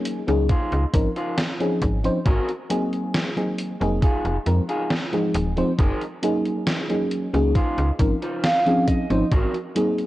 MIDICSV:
0, 0, Header, 1, 6, 480
1, 0, Start_track
1, 0, Key_signature, -5, "major"
1, 0, Tempo, 882353
1, 1229, Time_signature, 4, 2, 24, 8
1, 5476, End_track
2, 0, Start_track
2, 0, Title_t, "Clean electric guitar"
2, 0, Program_c, 0, 27
2, 269, Note_on_c, 0, 63, 83
2, 271, Note_on_c, 0, 65, 72
2, 273, Note_on_c, 0, 72, 92
2, 451, Note_off_c, 0, 63, 0
2, 451, Note_off_c, 0, 65, 0
2, 452, Note_off_c, 0, 72, 0
2, 632, Note_on_c, 0, 63, 76
2, 634, Note_on_c, 0, 65, 76
2, 636, Note_on_c, 0, 72, 84
2, 749, Note_off_c, 0, 63, 0
2, 749, Note_off_c, 0, 65, 0
2, 749, Note_off_c, 0, 72, 0
2, 1227, Note_on_c, 0, 60, 107
2, 1229, Note_on_c, 0, 66, 102
2, 1232, Note_on_c, 0, 70, 117
2, 1352, Note_off_c, 0, 60, 0
2, 1352, Note_off_c, 0, 66, 0
2, 1352, Note_off_c, 0, 70, 0
2, 2186, Note_on_c, 0, 63, 80
2, 2188, Note_on_c, 0, 65, 75
2, 2191, Note_on_c, 0, 68, 88
2, 2370, Note_off_c, 0, 63, 0
2, 2370, Note_off_c, 0, 65, 0
2, 2371, Note_off_c, 0, 68, 0
2, 2550, Note_on_c, 0, 63, 81
2, 2552, Note_on_c, 0, 65, 71
2, 2553, Note_on_c, 0, 68, 94
2, 2668, Note_off_c, 0, 63, 0
2, 2669, Note_off_c, 0, 65, 0
2, 2669, Note_off_c, 0, 68, 0
2, 3146, Note_on_c, 0, 63, 102
2, 3149, Note_on_c, 0, 68, 97
2, 3151, Note_on_c, 0, 70, 122
2, 3272, Note_off_c, 0, 63, 0
2, 3272, Note_off_c, 0, 68, 0
2, 3272, Note_off_c, 0, 70, 0
2, 4107, Note_on_c, 0, 63, 82
2, 4109, Note_on_c, 0, 65, 76
2, 4110, Note_on_c, 0, 72, 85
2, 4290, Note_off_c, 0, 63, 0
2, 4290, Note_off_c, 0, 65, 0
2, 4291, Note_off_c, 0, 72, 0
2, 4470, Note_on_c, 0, 63, 80
2, 4472, Note_on_c, 0, 65, 75
2, 4475, Note_on_c, 0, 72, 84
2, 4588, Note_off_c, 0, 63, 0
2, 4588, Note_off_c, 0, 65, 0
2, 4589, Note_off_c, 0, 72, 0
2, 4589, Note_on_c, 0, 77, 74
2, 4812, Note_off_c, 0, 77, 0
2, 4829, Note_on_c, 0, 75, 68
2, 5052, Note_off_c, 0, 75, 0
2, 5068, Note_on_c, 0, 60, 107
2, 5070, Note_on_c, 0, 66, 94
2, 5074, Note_on_c, 0, 70, 122
2, 5192, Note_off_c, 0, 60, 0
2, 5192, Note_off_c, 0, 66, 0
2, 5193, Note_off_c, 0, 70, 0
2, 5476, End_track
3, 0, Start_track
3, 0, Title_t, "FM electric piano"
3, 0, Program_c, 1, 5
3, 0, Note_on_c, 1, 54, 78
3, 0, Note_on_c, 1, 58, 75
3, 0, Note_on_c, 1, 61, 75
3, 0, Note_on_c, 1, 63, 70
3, 0, Note_on_c, 1, 68, 87
3, 121, Note_off_c, 1, 54, 0
3, 121, Note_off_c, 1, 58, 0
3, 123, Note_off_c, 1, 61, 0
3, 124, Note_off_c, 1, 63, 0
3, 125, Note_off_c, 1, 68, 0
3, 149, Note_on_c, 1, 54, 93
3, 150, Note_on_c, 1, 58, 86
3, 153, Note_on_c, 1, 61, 87
3, 155, Note_on_c, 1, 63, 82
3, 157, Note_on_c, 1, 68, 104
3, 253, Note_off_c, 1, 54, 0
3, 254, Note_off_c, 1, 58, 0
3, 255, Note_off_c, 1, 61, 0
3, 256, Note_off_c, 1, 63, 0
3, 257, Note_off_c, 1, 68, 0
3, 506, Note_on_c, 1, 53, 75
3, 508, Note_on_c, 1, 60, 72
3, 510, Note_on_c, 1, 61, 69
3, 512, Note_on_c, 1, 63, 73
3, 514, Note_on_c, 1, 70, 86
3, 591, Note_off_c, 1, 53, 0
3, 592, Note_off_c, 1, 60, 0
3, 592, Note_off_c, 1, 61, 0
3, 593, Note_off_c, 1, 63, 0
3, 595, Note_off_c, 1, 70, 0
3, 869, Note_on_c, 1, 53, 90
3, 871, Note_on_c, 1, 60, 83
3, 873, Note_on_c, 1, 61, 85
3, 875, Note_on_c, 1, 63, 82
3, 877, Note_on_c, 1, 68, 97
3, 1081, Note_off_c, 1, 53, 0
3, 1082, Note_off_c, 1, 60, 0
3, 1083, Note_off_c, 1, 61, 0
3, 1084, Note_off_c, 1, 63, 0
3, 1085, Note_off_c, 1, 68, 0
3, 1109, Note_on_c, 1, 53, 93
3, 1111, Note_on_c, 1, 60, 89
3, 1113, Note_on_c, 1, 61, 85
3, 1115, Note_on_c, 1, 63, 90
3, 1117, Note_on_c, 1, 72, 110
3, 1189, Note_off_c, 1, 53, 0
3, 1190, Note_off_c, 1, 60, 0
3, 1191, Note_off_c, 1, 61, 0
3, 1192, Note_off_c, 1, 63, 0
3, 1193, Note_off_c, 1, 72, 0
3, 1466, Note_on_c, 1, 54, 92
3, 1468, Note_on_c, 1, 58, 86
3, 1470, Note_on_c, 1, 60, 84
3, 1472, Note_on_c, 1, 63, 82
3, 1474, Note_on_c, 1, 68, 105
3, 1801, Note_off_c, 1, 54, 0
3, 1802, Note_off_c, 1, 58, 0
3, 1803, Note_off_c, 1, 60, 0
3, 1804, Note_off_c, 1, 63, 0
3, 1805, Note_off_c, 1, 68, 0
3, 1829, Note_on_c, 1, 54, 78
3, 1831, Note_on_c, 1, 58, 71
3, 1832, Note_on_c, 1, 60, 74
3, 1835, Note_on_c, 1, 63, 72
3, 1837, Note_on_c, 1, 68, 85
3, 2041, Note_off_c, 1, 54, 0
3, 2042, Note_off_c, 1, 58, 0
3, 2043, Note_off_c, 1, 60, 0
3, 2044, Note_off_c, 1, 63, 0
3, 2045, Note_off_c, 1, 68, 0
3, 2069, Note_on_c, 1, 54, 92
3, 2071, Note_on_c, 1, 58, 86
3, 2073, Note_on_c, 1, 60, 87
3, 2075, Note_on_c, 1, 63, 80
3, 2077, Note_on_c, 1, 68, 103
3, 2173, Note_off_c, 1, 54, 0
3, 2174, Note_off_c, 1, 58, 0
3, 2175, Note_off_c, 1, 60, 0
3, 2176, Note_off_c, 1, 63, 0
3, 2177, Note_off_c, 1, 68, 0
3, 2425, Note_on_c, 1, 53, 76
3, 2427, Note_on_c, 1, 56, 72
3, 2429, Note_on_c, 1, 60, 74
3, 2431, Note_on_c, 1, 63, 69
3, 2433, Note_on_c, 1, 70, 86
3, 2510, Note_off_c, 1, 53, 0
3, 2511, Note_off_c, 1, 56, 0
3, 2512, Note_off_c, 1, 60, 0
3, 2513, Note_off_c, 1, 63, 0
3, 2514, Note_off_c, 1, 70, 0
3, 2788, Note_on_c, 1, 53, 90
3, 2790, Note_on_c, 1, 56, 80
3, 2792, Note_on_c, 1, 60, 80
3, 2794, Note_on_c, 1, 63, 78
3, 2797, Note_on_c, 1, 68, 99
3, 3001, Note_off_c, 1, 53, 0
3, 3002, Note_off_c, 1, 56, 0
3, 3002, Note_off_c, 1, 60, 0
3, 3003, Note_off_c, 1, 63, 0
3, 3005, Note_off_c, 1, 68, 0
3, 3028, Note_on_c, 1, 53, 99
3, 3031, Note_on_c, 1, 56, 87
3, 3032, Note_on_c, 1, 60, 94
3, 3034, Note_on_c, 1, 63, 91
3, 3036, Note_on_c, 1, 72, 109
3, 3109, Note_off_c, 1, 53, 0
3, 3110, Note_off_c, 1, 56, 0
3, 3111, Note_off_c, 1, 60, 0
3, 3112, Note_off_c, 1, 63, 0
3, 3113, Note_off_c, 1, 72, 0
3, 3386, Note_on_c, 1, 54, 91
3, 3387, Note_on_c, 1, 58, 84
3, 3389, Note_on_c, 1, 61, 81
3, 3391, Note_on_c, 1, 63, 83
3, 3393, Note_on_c, 1, 68, 103
3, 3721, Note_off_c, 1, 54, 0
3, 3722, Note_off_c, 1, 58, 0
3, 3723, Note_off_c, 1, 61, 0
3, 3724, Note_off_c, 1, 63, 0
3, 3725, Note_off_c, 1, 68, 0
3, 3747, Note_on_c, 1, 54, 82
3, 3749, Note_on_c, 1, 58, 71
3, 3752, Note_on_c, 1, 61, 75
3, 3754, Note_on_c, 1, 63, 71
3, 3756, Note_on_c, 1, 68, 89
3, 3960, Note_off_c, 1, 54, 0
3, 3961, Note_off_c, 1, 58, 0
3, 3963, Note_off_c, 1, 61, 0
3, 3963, Note_off_c, 1, 63, 0
3, 3964, Note_off_c, 1, 68, 0
3, 3989, Note_on_c, 1, 54, 92
3, 3991, Note_on_c, 1, 58, 84
3, 3993, Note_on_c, 1, 61, 86
3, 3995, Note_on_c, 1, 63, 82
3, 3997, Note_on_c, 1, 68, 101
3, 4093, Note_off_c, 1, 54, 0
3, 4094, Note_off_c, 1, 58, 0
3, 4095, Note_off_c, 1, 61, 0
3, 4096, Note_off_c, 1, 63, 0
3, 4097, Note_off_c, 1, 68, 0
3, 4345, Note_on_c, 1, 53, 79
3, 4347, Note_on_c, 1, 60, 72
3, 4349, Note_on_c, 1, 61, 68
3, 4351, Note_on_c, 1, 63, 70
3, 4354, Note_on_c, 1, 70, 81
3, 4430, Note_off_c, 1, 53, 0
3, 4431, Note_off_c, 1, 60, 0
3, 4432, Note_off_c, 1, 61, 0
3, 4433, Note_off_c, 1, 63, 0
3, 4434, Note_off_c, 1, 70, 0
3, 4709, Note_on_c, 1, 53, 90
3, 4711, Note_on_c, 1, 60, 84
3, 4713, Note_on_c, 1, 61, 83
3, 4715, Note_on_c, 1, 63, 82
3, 4717, Note_on_c, 1, 68, 99
3, 4921, Note_off_c, 1, 53, 0
3, 4922, Note_off_c, 1, 60, 0
3, 4923, Note_off_c, 1, 61, 0
3, 4924, Note_off_c, 1, 63, 0
3, 4925, Note_off_c, 1, 68, 0
3, 4949, Note_on_c, 1, 53, 95
3, 4951, Note_on_c, 1, 60, 88
3, 4953, Note_on_c, 1, 61, 86
3, 4955, Note_on_c, 1, 63, 91
3, 4957, Note_on_c, 1, 72, 112
3, 5029, Note_off_c, 1, 53, 0
3, 5030, Note_off_c, 1, 60, 0
3, 5031, Note_off_c, 1, 61, 0
3, 5032, Note_off_c, 1, 63, 0
3, 5033, Note_off_c, 1, 72, 0
3, 5305, Note_on_c, 1, 54, 91
3, 5308, Note_on_c, 1, 58, 86
3, 5309, Note_on_c, 1, 60, 83
3, 5311, Note_on_c, 1, 63, 84
3, 5314, Note_on_c, 1, 68, 104
3, 5476, Note_off_c, 1, 54, 0
3, 5476, Note_off_c, 1, 58, 0
3, 5476, Note_off_c, 1, 60, 0
3, 5476, Note_off_c, 1, 63, 0
3, 5476, Note_off_c, 1, 68, 0
3, 5476, End_track
4, 0, Start_track
4, 0, Title_t, "FM bass"
4, 0, Program_c, 2, 39
4, 153, Note_on_c, 2, 37, 83
4, 300, Note_off_c, 2, 37, 0
4, 393, Note_on_c, 2, 37, 91
4, 465, Note_off_c, 2, 37, 0
4, 509, Note_on_c, 2, 32, 83
4, 586, Note_off_c, 2, 32, 0
4, 989, Note_on_c, 2, 32, 99
4, 1141, Note_off_c, 2, 32, 0
4, 1229, Note_on_c, 2, 32, 93
4, 1306, Note_off_c, 2, 32, 0
4, 2072, Note_on_c, 2, 29, 87
4, 2185, Note_off_c, 2, 29, 0
4, 2311, Note_on_c, 2, 29, 86
4, 2384, Note_off_c, 2, 29, 0
4, 2429, Note_on_c, 2, 41, 80
4, 2506, Note_off_c, 2, 41, 0
4, 2909, Note_on_c, 2, 27, 100
4, 3061, Note_off_c, 2, 27, 0
4, 3148, Note_on_c, 2, 30, 90
4, 3225, Note_off_c, 2, 30, 0
4, 3991, Note_on_c, 2, 37, 80
4, 4139, Note_off_c, 2, 37, 0
4, 4232, Note_on_c, 2, 37, 91
4, 4305, Note_off_c, 2, 37, 0
4, 4348, Note_on_c, 2, 32, 84
4, 4425, Note_off_c, 2, 32, 0
4, 4952, Note_on_c, 2, 32, 75
4, 5025, Note_off_c, 2, 32, 0
4, 5068, Note_on_c, 2, 32, 89
4, 5145, Note_off_c, 2, 32, 0
4, 5476, End_track
5, 0, Start_track
5, 0, Title_t, "Muted clean electric guitar strokes"
5, 153, Note_on_c, 9, 29, 82
5, 208, Note_off_c, 9, 29, 0
5, 871, Note_on_c, 9, 29, 33
5, 925, Note_off_c, 9, 29, 0
5, 1467, Note_on_c, 9, 29, 31
5, 1522, Note_off_c, 9, 29, 0
5, 2070, Note_on_c, 9, 29, 79
5, 2125, Note_off_c, 9, 29, 0
5, 2791, Note_on_c, 9, 29, 33
5, 2845, Note_off_c, 9, 29, 0
5, 3388, Note_on_c, 9, 29, 32
5, 3442, Note_off_c, 9, 29, 0
5, 3991, Note_on_c, 9, 29, 78
5, 4046, Note_off_c, 9, 29, 0
5, 4711, Note_on_c, 9, 29, 33
5, 4765, Note_off_c, 9, 29, 0
5, 5307, Note_on_c, 9, 29, 31
5, 5361, Note_off_c, 9, 29, 0
5, 5476, End_track
6, 0, Start_track
6, 0, Title_t, "Drums"
6, 28, Note_on_c, 9, 42, 91
6, 82, Note_off_c, 9, 42, 0
6, 152, Note_on_c, 9, 42, 40
6, 207, Note_off_c, 9, 42, 0
6, 268, Note_on_c, 9, 42, 72
6, 269, Note_on_c, 9, 36, 115
6, 323, Note_off_c, 9, 36, 0
6, 323, Note_off_c, 9, 42, 0
6, 392, Note_on_c, 9, 42, 38
6, 446, Note_off_c, 9, 42, 0
6, 509, Note_on_c, 9, 36, 107
6, 509, Note_on_c, 9, 42, 91
6, 563, Note_off_c, 9, 36, 0
6, 563, Note_off_c, 9, 42, 0
6, 632, Note_on_c, 9, 42, 40
6, 686, Note_off_c, 9, 42, 0
6, 749, Note_on_c, 9, 38, 113
6, 749, Note_on_c, 9, 42, 62
6, 803, Note_off_c, 9, 38, 0
6, 803, Note_off_c, 9, 42, 0
6, 873, Note_on_c, 9, 42, 39
6, 927, Note_off_c, 9, 42, 0
6, 989, Note_on_c, 9, 36, 56
6, 989, Note_on_c, 9, 42, 97
6, 1043, Note_off_c, 9, 36, 0
6, 1043, Note_off_c, 9, 42, 0
6, 1113, Note_on_c, 9, 42, 41
6, 1167, Note_off_c, 9, 42, 0
6, 1229, Note_on_c, 9, 36, 126
6, 1229, Note_on_c, 9, 42, 66
6, 1283, Note_off_c, 9, 36, 0
6, 1284, Note_off_c, 9, 42, 0
6, 1353, Note_on_c, 9, 42, 39
6, 1407, Note_off_c, 9, 42, 0
6, 1469, Note_on_c, 9, 42, 97
6, 1524, Note_off_c, 9, 42, 0
6, 1593, Note_on_c, 9, 42, 39
6, 1647, Note_off_c, 9, 42, 0
6, 1710, Note_on_c, 9, 38, 121
6, 1710, Note_on_c, 9, 42, 65
6, 1764, Note_off_c, 9, 38, 0
6, 1764, Note_off_c, 9, 42, 0
6, 1833, Note_on_c, 9, 42, 39
6, 1888, Note_off_c, 9, 42, 0
6, 1949, Note_on_c, 9, 42, 90
6, 2003, Note_off_c, 9, 42, 0
6, 2073, Note_on_c, 9, 42, 39
6, 2128, Note_off_c, 9, 42, 0
6, 2188, Note_on_c, 9, 36, 122
6, 2189, Note_on_c, 9, 42, 70
6, 2243, Note_off_c, 9, 36, 0
6, 2244, Note_off_c, 9, 42, 0
6, 2312, Note_on_c, 9, 42, 37
6, 2367, Note_off_c, 9, 42, 0
6, 2429, Note_on_c, 9, 42, 84
6, 2483, Note_off_c, 9, 42, 0
6, 2552, Note_on_c, 9, 42, 40
6, 2607, Note_off_c, 9, 42, 0
6, 2668, Note_on_c, 9, 38, 119
6, 2668, Note_on_c, 9, 42, 66
6, 2723, Note_off_c, 9, 38, 0
6, 2723, Note_off_c, 9, 42, 0
6, 2791, Note_on_c, 9, 42, 37
6, 2846, Note_off_c, 9, 42, 0
6, 2908, Note_on_c, 9, 42, 93
6, 2963, Note_off_c, 9, 42, 0
6, 3031, Note_on_c, 9, 42, 38
6, 3085, Note_off_c, 9, 42, 0
6, 3148, Note_on_c, 9, 36, 119
6, 3148, Note_on_c, 9, 42, 63
6, 3202, Note_off_c, 9, 36, 0
6, 3202, Note_off_c, 9, 42, 0
6, 3271, Note_on_c, 9, 42, 38
6, 3326, Note_off_c, 9, 42, 0
6, 3389, Note_on_c, 9, 42, 86
6, 3443, Note_off_c, 9, 42, 0
6, 3512, Note_on_c, 9, 42, 40
6, 3566, Note_off_c, 9, 42, 0
6, 3629, Note_on_c, 9, 38, 122
6, 3629, Note_on_c, 9, 42, 62
6, 3683, Note_off_c, 9, 38, 0
6, 3683, Note_off_c, 9, 42, 0
6, 3753, Note_on_c, 9, 42, 39
6, 3807, Note_off_c, 9, 42, 0
6, 3869, Note_on_c, 9, 42, 84
6, 3924, Note_off_c, 9, 42, 0
6, 3993, Note_on_c, 9, 42, 39
6, 4047, Note_off_c, 9, 42, 0
6, 4108, Note_on_c, 9, 36, 117
6, 4109, Note_on_c, 9, 42, 66
6, 4162, Note_off_c, 9, 36, 0
6, 4164, Note_off_c, 9, 42, 0
6, 4232, Note_on_c, 9, 42, 37
6, 4286, Note_off_c, 9, 42, 0
6, 4348, Note_on_c, 9, 36, 106
6, 4349, Note_on_c, 9, 42, 85
6, 4402, Note_off_c, 9, 36, 0
6, 4403, Note_off_c, 9, 42, 0
6, 4473, Note_on_c, 9, 42, 38
6, 4527, Note_off_c, 9, 42, 0
6, 4589, Note_on_c, 9, 38, 116
6, 4589, Note_on_c, 9, 42, 60
6, 4643, Note_off_c, 9, 38, 0
6, 4643, Note_off_c, 9, 42, 0
6, 4712, Note_on_c, 9, 42, 37
6, 4767, Note_off_c, 9, 42, 0
6, 4828, Note_on_c, 9, 36, 61
6, 4828, Note_on_c, 9, 42, 92
6, 4882, Note_off_c, 9, 36, 0
6, 4883, Note_off_c, 9, 42, 0
6, 4953, Note_on_c, 9, 42, 38
6, 5007, Note_off_c, 9, 42, 0
6, 5068, Note_on_c, 9, 36, 124
6, 5069, Note_on_c, 9, 42, 61
6, 5122, Note_off_c, 9, 36, 0
6, 5123, Note_off_c, 9, 42, 0
6, 5192, Note_on_c, 9, 42, 38
6, 5246, Note_off_c, 9, 42, 0
6, 5308, Note_on_c, 9, 42, 90
6, 5363, Note_off_c, 9, 42, 0
6, 5432, Note_on_c, 9, 42, 37
6, 5476, Note_off_c, 9, 42, 0
6, 5476, End_track
0, 0, End_of_file